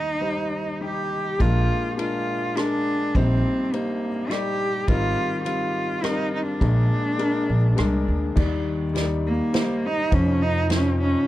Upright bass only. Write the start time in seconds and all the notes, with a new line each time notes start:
1.40 A#1
3.15 A#1
4.88 G#1
6.61 A#1
7.50 A#1
7.79 C2
8.08 D2
8.37 D#2
10.12 F2